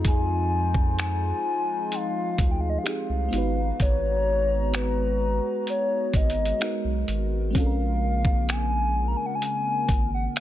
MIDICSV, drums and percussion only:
0, 0, Header, 1, 2, 480
1, 0, Start_track
1, 0, Key_signature, -5, "minor"
1, 0, Tempo, 937500
1, 24, Time_signature, 4, 2, 24, 8
1, 5325, End_track
2, 0, Start_track
2, 0, Title_t, "Drums"
2, 24, Note_on_c, 9, 36, 100
2, 24, Note_on_c, 9, 42, 69
2, 75, Note_off_c, 9, 36, 0
2, 75, Note_off_c, 9, 42, 0
2, 381, Note_on_c, 9, 36, 100
2, 432, Note_off_c, 9, 36, 0
2, 505, Note_on_c, 9, 42, 81
2, 509, Note_on_c, 9, 26, 113
2, 556, Note_off_c, 9, 42, 0
2, 560, Note_off_c, 9, 26, 0
2, 982, Note_on_c, 9, 42, 70
2, 1034, Note_off_c, 9, 42, 0
2, 1221, Note_on_c, 9, 36, 102
2, 1222, Note_on_c, 9, 42, 60
2, 1272, Note_off_c, 9, 36, 0
2, 1273, Note_off_c, 9, 42, 0
2, 1463, Note_on_c, 9, 42, 63
2, 1467, Note_on_c, 9, 26, 107
2, 1514, Note_off_c, 9, 42, 0
2, 1518, Note_off_c, 9, 26, 0
2, 1704, Note_on_c, 9, 42, 58
2, 1755, Note_off_c, 9, 42, 0
2, 1944, Note_on_c, 9, 42, 69
2, 1945, Note_on_c, 9, 36, 97
2, 1995, Note_off_c, 9, 42, 0
2, 1996, Note_off_c, 9, 36, 0
2, 2425, Note_on_c, 9, 42, 75
2, 2430, Note_on_c, 9, 26, 111
2, 2476, Note_off_c, 9, 42, 0
2, 2481, Note_off_c, 9, 26, 0
2, 2903, Note_on_c, 9, 42, 68
2, 2954, Note_off_c, 9, 42, 0
2, 3141, Note_on_c, 9, 36, 99
2, 3144, Note_on_c, 9, 42, 51
2, 3192, Note_off_c, 9, 36, 0
2, 3195, Note_off_c, 9, 42, 0
2, 3224, Note_on_c, 9, 42, 54
2, 3276, Note_off_c, 9, 42, 0
2, 3305, Note_on_c, 9, 42, 51
2, 3356, Note_off_c, 9, 42, 0
2, 3384, Note_on_c, 9, 42, 64
2, 3388, Note_on_c, 9, 26, 107
2, 3435, Note_off_c, 9, 42, 0
2, 3439, Note_off_c, 9, 26, 0
2, 3625, Note_on_c, 9, 42, 64
2, 3676, Note_off_c, 9, 42, 0
2, 3865, Note_on_c, 9, 36, 103
2, 3865, Note_on_c, 9, 42, 68
2, 3916, Note_off_c, 9, 36, 0
2, 3916, Note_off_c, 9, 42, 0
2, 4222, Note_on_c, 9, 36, 102
2, 4273, Note_off_c, 9, 36, 0
2, 4346, Note_on_c, 9, 42, 77
2, 4350, Note_on_c, 9, 26, 114
2, 4397, Note_off_c, 9, 42, 0
2, 4402, Note_off_c, 9, 26, 0
2, 4823, Note_on_c, 9, 42, 68
2, 4874, Note_off_c, 9, 42, 0
2, 5061, Note_on_c, 9, 36, 96
2, 5063, Note_on_c, 9, 42, 65
2, 5113, Note_off_c, 9, 36, 0
2, 5114, Note_off_c, 9, 42, 0
2, 5304, Note_on_c, 9, 42, 62
2, 5308, Note_on_c, 9, 26, 104
2, 5325, Note_off_c, 9, 26, 0
2, 5325, Note_off_c, 9, 42, 0
2, 5325, End_track
0, 0, End_of_file